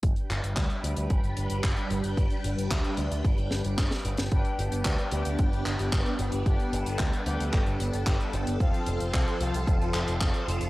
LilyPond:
<<
  \new Staff \with { instrumentName = "Analog polysynth" } { \time 4/4 \key g \major \tempo 4 = 112 r1 | r1 | <g d' g' b' g''>4. <g d' g' b' g''>4~ <g d' g' b' g''>16 <g d' g' b' g''>4~ <g d' g' b' g''>16 | <g d' g' b' g''>4. <g d' g' b' g''>2~ <g d' g' b' g''>8 |
<f c' f' a' f''>4. <f c' f' a' f''>4~ <f c' f' a' f''>16 <f c' f' a' f''>4~ <f c' f' a' f''>16 | }
  \new Staff \with { instrumentName = "String machine" } { \time 4/4 \key g \major << { <g g''>1~ | <g g''>1 | g'1 | a'1 |
<f c''>1 | } \\ { <d' b'>1~ | <d' b'>1 | <b d'>1~ | <b d'>1 |
f'1 | } >> }
  \new Staff \with { instrumentName = "Picked electric bass" } { \clef bass \time 4/4 \key g \major g,,16 r16 g,,16 g,,16 d,16 r16 d,16 d,16 g,,16 g,,16 g,,16 g,,16 g,,16 r16 g,,16 g,,16 | g,,16 r16 g,,16 g,,16 d,16 r16 d,16 d,16 g,,16 g,,16 g,,16 g,,16 g,,16 r16 g,,16 g,,16 | g,,16 r16 g,,16 g,,16 d,16 r16 d,16 d,16 g,,16 g,,16 g,,16 g,,16 g,,16 r16 g,,16 g,,16 | g,,16 r16 g,,16 g,,16 d,16 r16 d,16 d,16 g,,16 g,,16 g,,16 g,,16 g,,16 r16 g,,16 g,,16 |
f,,16 r16 f,,16 f,,16 c,16 r16 c,16 c,16 f,,16 f,,16 f,,16 f,,16 f,,16 r16 f,,16 f,,16 | }
  \new DrumStaff \with { instrumentName = "Drums" } \drummode { \time 4/4 <hh bd>16 hh16 <hc hh>16 hh16 <hc hh bd>16 hh16 hh16 hh16 <hh bd>16 hh16 hh16 hh16 <hc hh bd>16 hh16 hh16 hh16 | <hh bd>16 hh16 hh16 hh16 <hc hh bd>16 hh16 hh16 hh16 <hh bd>16 hh16 <hh sn>16 hh16 <hc hh bd sn>16 <hh sn>16 hh16 <hh sn>16 | <hh bd>16 hh16 hh16 hh16 <hc hh bd>16 hh16 hh16 hh16 <hh bd>16 hh16 <hc hh>16 hh16 <hc hh bd>16 hh16 hh16 hh16 | <hh bd>16 hh16 hh16 hh16 <hc hh bd>16 hh16 hh16 hh16 <hc hh bd>16 hh16 hh16 hh16 <hc hh bd>16 hh16 hh16 hh16 |
<hh bd>16 hh16 hh16 hh16 <hc hh bd>16 hh16 hh16 hh16 <hh bd>16 hh16 <hc hh>16 hh16 <hc hh bd>16 hh16 hh16 hh16 | }
>>